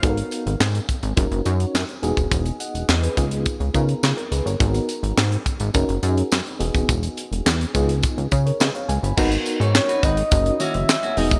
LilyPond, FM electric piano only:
\new Staff \with { instrumentName = "FM electric piano" } { \time 4/4 \key gis \minor \tempo 4 = 105 << { r1 | r8 <dis'' fis''>8 <b' dis''>16 <gis' b'>8 r4 r16 <eis' gis'>16 ais'16 <gis' b'>16 <ais' cis''>16~ | <ais' cis''>16 r2. r8. | r2 r8. <ais' cis''>16 <b' dis''>16 <cis'' eis''>16 <eis'' gis''>16 <gis'' b''>16~ |
<gis'' b''>16 r2. r8. | } \\ { <b dis' fis' a' ais'>4~ <b dis' fis' a' ais'>16 r8. <cis' dis' fis' ais'>8 <cis' dis' fis' cis''>8 r8 <b dis' fis' gis'>8~ | <b dis' fis' gis'>4 r8 <b dis' eis' gis'>4 <b dis' eis' ais'>8 r4 | <b dis' fis' gis' ais'>4~ <b dis' fis' gis' ais'>16 r8. <cis' dis' fis' ais'>8 <cis' dis' fis' gis'>8 r8 <b dis' fis' gis'>8~ | <b dis' fis' gis'>4 r8 <b dis' eis' gis'>4 r4. |
<b dis' fis' ais'>4~ <b dis' fis' ais'>16 r8. <cis' dis' fis' ais'>8 <dis cis' fis' cis''>8 r8 <b dis' fis' gis'>8 | } >> }